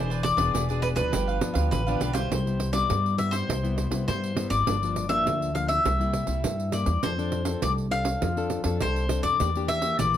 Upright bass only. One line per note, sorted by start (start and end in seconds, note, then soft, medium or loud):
0.00 0.33 E1 medium
0.37 0.51 E1 loud
0.54 0.97 E1 medium
0.96 1.10 D2 medium
1.14 1.39 G1 medium
1.55 1.69 D2 medium
1.72 1.99 A1 medium
2.01 2.28 B1 medium
2.31 2.81 C2 medium
2.91 3.41 G2 medium
3.49 3.87 C2 medium
3.91 4.05 C2 medium
4.08 4.46 G2 medium
4.51 4.64 G#1 medium
4.68 5.18 G1 medium
5.27 5.77 D2 medium
5.85 6.23 C2 loud
6.28 6.41 C2 medium
6.45 6.82 G2 medium
6.87 7.00 E2 medium
7.03 7.54 F2 medium
7.63 8.13 C2 loud
8.22 8.60 F2 medium
8.65 8.78 F2 medium
8.81 9.18 C2 medium
9.24 9.37 F2 medium
9.41 9.90 E2 medium
9.99 10.17 A#1 medium